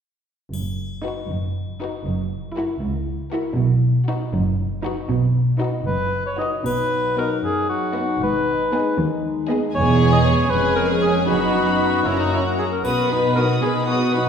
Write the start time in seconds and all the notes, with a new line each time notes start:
0.53 F#1 F#2, triangle
1.04 D#4 F#4 B4
1.30 F#1 F#2
1.81 D#4 F#4 B4
2.06 F#1 F#2
2.56 E4 F#4 A#4
2.81 C#2
3.31 E4 F#4 A#4
3.56 B1 B2
4.08 D#4 F#4 B4
4.33 F#1 F#2
4.84 D#4 F#4 B4
5.09 B1 B2
5.60 D#4 F#4 B4
5.87 F#1 F#2 B4
6.26 C#5
6.39 D#4 F#4 B4 D#5
6.65 B1 B2 F#3 D#4 B4, triangle
7.16 B3 F#4 A#4 D#5
7.43 F#2 G#4
7.70 F#4
7.95 B3 F#4 D#5
8.22 G#1 G#2 G#3 B4
8.73 B3 G#4 D#5
8.98 D#2
9.49 B3 G#4 D#5
9.74 E1 E2 B3 G#4 C#5 G#5
10.13 D#5
10.25 C#5
10.50 F1 F2 C#4 G#4 B4 G#5
10.76 A#4
11.02 G#4
11.27 F#1 F#2 B3 D#4 F#4 B5
12.06 F#1 F#2 A#3 C#4 E4 F#4 A#5
12.20 D#4
12.33 E4
12.47 F#4
12.59 G#4
12.72 A#4
12.84 B1 B2 B3 F#4 B4 D#6, triangle
13.11 F#3 D#4 B4 B5
13.36 F#3 B3 D#4 F#4 A#4 D#6
13.62 B2 D#4 G#4 B4 B5
13.86 F#3 B3 D#4 F#4 D#6
14.13 F#3 D#4 B4 B5